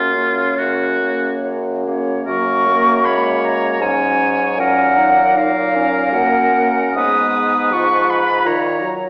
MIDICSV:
0, 0, Header, 1, 6, 480
1, 0, Start_track
1, 0, Key_signature, 6, "major"
1, 0, Tempo, 837989
1, 1297, Time_signature, 3, 2, 24, 8
1, 1297, Tempo, 772201
1, 3697, Tempo, 824176
1, 4177, Tempo, 750000
1, 5550, End_track
2, 0, Start_track
2, 0, Title_t, "Flute"
2, 0, Program_c, 0, 73
2, 0, Note_on_c, 0, 73, 49
2, 91, Note_off_c, 0, 73, 0
2, 96, Note_on_c, 0, 73, 49
2, 572, Note_off_c, 0, 73, 0
2, 580, Note_on_c, 0, 73, 47
2, 936, Note_off_c, 0, 73, 0
2, 1064, Note_on_c, 0, 73, 55
2, 1293, Note_off_c, 0, 73, 0
2, 1304, Note_on_c, 0, 85, 95
2, 1786, Note_on_c, 0, 83, 78
2, 1795, Note_off_c, 0, 85, 0
2, 2013, Note_off_c, 0, 83, 0
2, 2019, Note_on_c, 0, 82, 81
2, 2263, Note_on_c, 0, 80, 80
2, 2272, Note_off_c, 0, 82, 0
2, 2746, Note_on_c, 0, 78, 80
2, 2756, Note_off_c, 0, 80, 0
2, 3227, Note_on_c, 0, 77, 81
2, 3237, Note_off_c, 0, 78, 0
2, 3703, Note_on_c, 0, 78, 79
2, 3712, Note_off_c, 0, 77, 0
2, 4173, Note_off_c, 0, 78, 0
2, 4176, Note_on_c, 0, 87, 100
2, 4674, Note_on_c, 0, 85, 84
2, 4684, Note_off_c, 0, 87, 0
2, 4913, Note_on_c, 0, 83, 82
2, 4923, Note_off_c, 0, 85, 0
2, 5145, Note_on_c, 0, 82, 81
2, 5155, Note_off_c, 0, 83, 0
2, 5451, Note_off_c, 0, 82, 0
2, 5550, End_track
3, 0, Start_track
3, 0, Title_t, "Oboe"
3, 0, Program_c, 1, 68
3, 0, Note_on_c, 1, 65, 81
3, 336, Note_on_c, 1, 66, 61
3, 344, Note_off_c, 1, 65, 0
3, 819, Note_off_c, 1, 66, 0
3, 1296, Note_on_c, 1, 70, 65
3, 1786, Note_on_c, 1, 73, 57
3, 1795, Note_off_c, 1, 70, 0
3, 2250, Note_off_c, 1, 73, 0
3, 2263, Note_on_c, 1, 73, 58
3, 2729, Note_off_c, 1, 73, 0
3, 2750, Note_on_c, 1, 70, 57
3, 3214, Note_off_c, 1, 70, 0
3, 3232, Note_on_c, 1, 70, 65
3, 4166, Note_off_c, 1, 70, 0
3, 4194, Note_on_c, 1, 71, 60
3, 5151, Note_on_c, 1, 73, 60
3, 5161, Note_off_c, 1, 71, 0
3, 5454, Note_off_c, 1, 73, 0
3, 5550, End_track
4, 0, Start_track
4, 0, Title_t, "Clarinet"
4, 0, Program_c, 2, 71
4, 0, Note_on_c, 2, 58, 47
4, 92, Note_off_c, 2, 58, 0
4, 95, Note_on_c, 2, 58, 44
4, 572, Note_off_c, 2, 58, 0
4, 581, Note_on_c, 2, 58, 47
4, 1052, Note_off_c, 2, 58, 0
4, 1063, Note_on_c, 2, 58, 43
4, 1292, Note_off_c, 2, 58, 0
4, 1302, Note_on_c, 2, 58, 62
4, 2248, Note_on_c, 2, 61, 60
4, 2258, Note_off_c, 2, 58, 0
4, 2636, Note_off_c, 2, 61, 0
4, 2742, Note_on_c, 2, 61, 64
4, 2984, Note_on_c, 2, 63, 58
4, 2993, Note_off_c, 2, 61, 0
4, 3220, Note_off_c, 2, 63, 0
4, 3223, Note_on_c, 2, 63, 61
4, 3468, Note_on_c, 2, 61, 63
4, 3478, Note_off_c, 2, 63, 0
4, 4183, Note_off_c, 2, 61, 0
4, 4187, Note_on_c, 2, 59, 60
4, 4681, Note_on_c, 2, 65, 57
4, 4691, Note_off_c, 2, 59, 0
4, 5452, Note_off_c, 2, 65, 0
4, 5550, End_track
5, 0, Start_track
5, 0, Title_t, "French horn"
5, 0, Program_c, 3, 60
5, 0, Note_on_c, 3, 49, 44
5, 91, Note_off_c, 3, 49, 0
5, 94, Note_on_c, 3, 49, 44
5, 571, Note_off_c, 3, 49, 0
5, 587, Note_on_c, 3, 49, 46
5, 1055, Note_off_c, 3, 49, 0
5, 1075, Note_on_c, 3, 49, 46
5, 1298, Note_off_c, 3, 49, 0
5, 1311, Note_on_c, 3, 54, 62
5, 1557, Note_on_c, 3, 58, 59
5, 1567, Note_off_c, 3, 54, 0
5, 1779, Note_off_c, 3, 58, 0
5, 1783, Note_on_c, 3, 56, 57
5, 2252, Note_on_c, 3, 54, 61
5, 2262, Note_off_c, 3, 56, 0
5, 3699, Note_on_c, 3, 58, 65
5, 3707, Note_off_c, 3, 54, 0
5, 3925, Note_off_c, 3, 58, 0
5, 3929, Note_on_c, 3, 58, 65
5, 4101, Note_off_c, 3, 58, 0
5, 4172, Note_on_c, 3, 56, 60
5, 4662, Note_on_c, 3, 53, 56
5, 4672, Note_off_c, 3, 56, 0
5, 5134, Note_on_c, 3, 51, 67
5, 5144, Note_off_c, 3, 53, 0
5, 5364, Note_on_c, 3, 54, 61
5, 5374, Note_off_c, 3, 51, 0
5, 5550, Note_off_c, 3, 54, 0
5, 5550, End_track
6, 0, Start_track
6, 0, Title_t, "Bassoon"
6, 0, Program_c, 4, 70
6, 0, Note_on_c, 4, 42, 55
6, 284, Note_off_c, 4, 42, 0
6, 337, Note_on_c, 4, 42, 50
6, 763, Note_off_c, 4, 42, 0
6, 823, Note_on_c, 4, 42, 54
6, 1243, Note_off_c, 4, 42, 0
6, 1297, Note_on_c, 4, 42, 70
6, 2220, Note_off_c, 4, 42, 0
6, 2248, Note_on_c, 4, 44, 60
6, 2721, Note_off_c, 4, 44, 0
6, 2733, Note_on_c, 4, 46, 65
6, 3702, Note_on_c, 4, 42, 55
6, 3710, Note_off_c, 4, 46, 0
6, 4179, Note_off_c, 4, 42, 0
6, 4182, Note_on_c, 4, 44, 69
6, 5141, Note_on_c, 4, 46, 61
6, 5151, Note_off_c, 4, 44, 0
6, 5449, Note_off_c, 4, 46, 0
6, 5550, End_track
0, 0, End_of_file